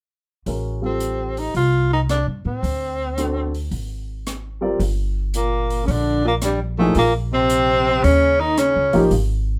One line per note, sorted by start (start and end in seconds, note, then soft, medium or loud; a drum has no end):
0.46 1.51 A1 medium
0.46 0.79 G#3 soft
0.46 0.79 C#4 soft
0.46 0.80 F#4 soft
0.46 0.80 A#4 soft
0.46 open hi-hat soft
0.81 1.54 G3 soft
0.81 1.55 C4 soft
0.81 1.40 C4 medium
0.81 1.55 F4 soft
0.81 1.55 A4 soft
1.00 closed hi-hat soft
1.37 1.56 D#4 medium
1.37 open hi-hat soft
1.54 2.23 C2 medium
1.54 1.90 F4 medium
1.54 open hi-hat soft
1.93 2.01 D#4 medium
2.09 2.26 D4 medium
2.09 cross-stick medium
2.09 closed hi-hat soft
2.27 2.44 G2 medium
2.45 2.62 A2 medium
2.45 3.50 C4 medium
2.63 3.68 D2 medium
2.63 open hi-hat soft
3.18 3.50 C4 soft
3.18 3.50 D4 soft
3.18 3.51 F#4 soft
3.18 3.51 A4 soft
3.18 closed hi-hat soft
3.54 open hi-hat soft
3.71 4.76 G#1 medium
3.71 open hi-hat soft
4.27 cross-stick soft
4.27 closed hi-hat soft
4.61 4.78 G3 soft
4.61 4.78 C4 soft
4.61 4.78 F4 soft
4.61 4.78 A#4 soft
4.61 4.78 D5 medium
4.79 5.84 G1 medium
4.79 open hi-hat soft
5.34 5.80 A#2 medium
5.34 5.81 A#3 medium
5.34 closed hi-hat soft
5.70 open hi-hat soft
5.83 5.90 C#3 soft
5.83 5.93 C#4 medium
5.88 6.92 A#1 medium
5.88 6.24 D3 medium
5.88 6.26 D4 medium
5.88 open hi-hat soft
6.25 6.33 A#2 medium
6.25 6.35 A#3 medium
6.42 6.59 G2 medium
6.42 6.60 G3 medium
6.42 cross-stick medium
6.42 closed hi-hat soft
6.78 6.95 A2 medium
6.78 6.95 F3 medium
6.78 6.95 A3 medium
6.78 6.95 A#3 medium
6.78 6.95 D#4 medium
6.78 6.95 G#4 medium
6.95 8.00 A#1 medium
6.95 7.12 A#2 medium
6.95 7.14 A#3 medium
6.95 open hi-hat soft
7.32 8.06 C3 medium
7.32 8.05 C4 medium
7.50 closed hi-hat soft
8.03 8.72 D#2 medium
8.03 8.42 C#3 medium
8.03 8.41 C#4 medium
8.03 open hi-hat soft
8.40 8.60 D#3 medium
8.40 8.60 D#4 medium
8.57 9.04 C#3 medium
8.57 9.03 C#4 medium
8.57 cross-stick medium
8.57 closed hi-hat soft
8.76 8.93 C#2 medium
8.93 9.10 A1 medium
8.93 9.10 F3 medium
8.93 9.10 A#3 medium
8.93 9.10 D#4 medium
8.93 9.11 G4 medium
8.93 open hi-hat soft
9.11 9.59 G#1 medium
9.11 open hi-hat soft